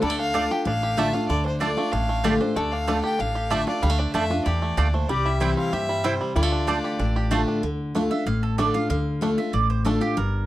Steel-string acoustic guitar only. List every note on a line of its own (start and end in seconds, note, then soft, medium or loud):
0.02 0.32 D3 loud
0.33 0.49 D3 medium
0.33 0.50 A3 medium
0.33 0.50 D4 medium
0.33 0.49 F4 loud
0.51 0.66 D4 soft
0.51 0.65 F4 medium
0.65 1.26 A2 medium
0.97 1.13 D3 loud
0.97 1.13 A3 loud
0.97 1.13 D4 loud
0.97 1.12 F4 loud
1.13 1.29 D4 medium
1.13 1.28 F4 medium
1.30 1.60 D3 medium
1.61 1.76 D3 medium
1.61 1.77 A3 medium
1.61 1.77 D4 medium
1.61 1.76 F4 medium
1.77 1.92 D4 soft
1.77 1.92 F4 medium
1.93 2.53 A2 medium
2.24 2.40 D3 medium
2.24 2.40 A3 loud
2.24 2.40 D4 medium
2.24 2.39 F4 loud
2.40 2.56 D4 soft
2.40 2.55 F4 medium
2.56 2.86 D3 medium
2.87 3.18 D3 medium
2.87 3.18 A3 medium
2.87 3.18 D4 medium
2.87 3.18 F4 medium
3.20 3.80 A2 medium
3.50 3.66 D3 medium
3.50 3.67 A3 loud
3.50 3.67 D4 loud
3.50 3.66 F4 loud
3.67 3.83 D4 medium
3.67 3.82 F4 medium
3.83 4.12 D3 loud
4.14 4.30 D3 medium
4.14 4.30 A3 medium
4.14 4.30 D4 medium
4.14 4.29 F4 medium
4.30 4.46 D4 soft
4.30 4.45 F4 medium
4.46 4.76 E3 medium
4.77 5.08 A#2 medium
5.09 5.70 C3 medium
5.40 5.71 E3 medium
5.40 5.71 G3 medium
5.40 5.71 C4 loud
5.40 5.72 E4 medium
5.73 6.03 A#2 medium
6.04 6.35 C3 medium
6.36 6.66 D3 medium
6.67 6.98 D3 medium
6.67 6.98 A3 medium
6.67 6.98 D4 medium
6.67 6.99 F4 loud
6.99 7.60 A2 medium
7.31 7.61 D3 medium
7.31 7.61 A3 loud
7.31 7.62 D4 loud
7.31 7.62 F4 loud
7.63 7.93 D3 medium
7.95 8.10 D3 medium
7.95 8.11 A3 medium
7.95 8.11 D4 medium
7.95 8.10 F4 loud
8.11 8.27 D4 medium
8.11 8.26 F4 medium
8.26 8.87 A2 medium
8.58 8.74 D3 medium
8.58 8.74 A3 loud
8.58 8.75 D4 loud
8.58 8.73 F4 loud
8.75 8.90 D4 soft
8.75 8.89 F4 medium
8.90 9.20 D3 loud
9.21 9.37 D3 medium
9.21 9.38 A3 medium
9.21 9.38 D4 medium
9.21 9.36 F4 medium
9.38 9.54 D4 soft
9.38 9.53 F4 medium
9.53 10.14 A2 medium
9.85 10.01 D3 medium
9.85 10.01 A3 loud
9.85 10.01 D4 loud
9.85 10.00 F4 loud
10.01 10.17 D4 medium
10.01 10.16 F4 medium
10.17 10.46 G2 medium